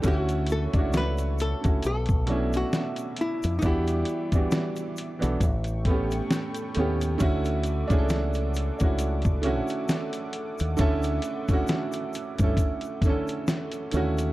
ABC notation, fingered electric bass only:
X:1
M:4/4
L:1/16
Q:"Swing 16ths" 1/4=67
K:D
V:1 name="Fingered electric bass" clef=bass
D,,3 C,,4 C,, B,,,4 z3 =F,, | E,,2 z4 z B,,, A,,,4 z2 _E,,2 | D,,3 C,,4 C,,4 z4 _E,, | D,,2 z4 z G,, z6 _E,,2 |]